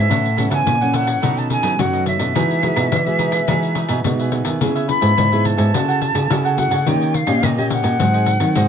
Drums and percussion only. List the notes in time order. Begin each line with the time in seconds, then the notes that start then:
0.11 pandeiro
0.25 pandeiro
0.38 pandeiro
0.51 pandeiro
0.67 pandeiro
0.81 pandeiro
0.94 pandeiro
1.07 pandeiro
1.23 pandeiro
1.37 pandeiro
1.50 pandeiro
1.63 pandeiro
1.79 pandeiro
1.94 pandeiro
2.06 pandeiro
2.19 pandeiro
2.36 pandeiro
2.51 pandeiro
2.63 pandeiro
2.76 pandeiro
2.92 pandeiro
3.06 pandeiro
3.19 pandeiro
3.32 pandeiro
3.48 pandeiro
3.63 pandeiro
3.75 pandeiro
3.89 pandeiro
4.04 pandeiro
4.19 pandeiro
4.32 pandeiro
4.45 pandeiro
4.61 pandeiro
4.76 pandeiro
4.89 pandeiro
5.02 pandeiro
5.18 pandeiro
5.33 pandeiro
5.45 pandeiro
5.58 pandeiro
5.74 pandeiro
5.89 pandeiro
6.02 pandeiro
6.15 pandeiro
6.30 pandeiro
6.45 pandeiro
6.58 pandeiro
6.71 pandeiro
6.87 pandeiro
7.02 pandeiro
7.14 pandeiro
7.27 pandeiro
7.43 pandeiro
7.58 pandeiro
7.70 pandeiro
7.84 pandeiro
8.00 pandeiro
8.14 pandeiro
8.26 pandeiro
8.40 pandeiro
8.55 pandeiro